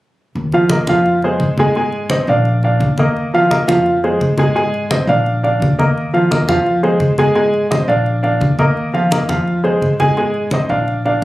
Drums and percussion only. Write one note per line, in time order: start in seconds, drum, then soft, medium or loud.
0.36 high conga soft
0.52 high conga soft
0.70 high conga medium
0.87 high conga medium
1.06 high conga soft
1.22 high conga soft
1.40 high conga medium
1.58 high conga medium
1.75 high conga soft
1.92 high conga soft
2.10 high conga medium
2.27 high conga soft
2.45 high conga soft
2.63 high conga soft
2.80 high conga medium
2.98 high conga medium
3.17 high conga soft
3.35 high conga soft
3.51 high conga medium
3.69 high conga medium
3.86 high conga soft
4.04 high conga soft
4.21 high conga medium
4.38 high conga medium
4.57 high conga soft
4.74 high conga soft
4.91 high conga medium
5.09 high conga soft
5.26 high conga soft
5.44 high conga soft
5.62 high conga medium
5.79 high conga medium
5.98 high conga soft
6.15 high conga soft
6.32 high conga medium
6.49 high conga medium
6.66 high conga soft
6.84 high conga soft
7.00 high conga medium
7.18 high conga medium
7.35 high conga soft
7.54 high conga soft
7.72 high conga medium
7.90 high conga soft
8.06 high conga soft
8.24 high conga soft
8.41 high conga medium
8.59 high conga medium
8.77 high conga soft
8.95 high conga soft
9.12 high conga medium
9.29 high conga medium
9.47 high conga soft
9.65 high conga soft
9.82 high conga medium
10.00 high conga medium
10.17 high conga soft
10.34 high conga soft
10.51 high conga medium
10.70 high conga soft
10.88 high conga soft
11.06 high conga soft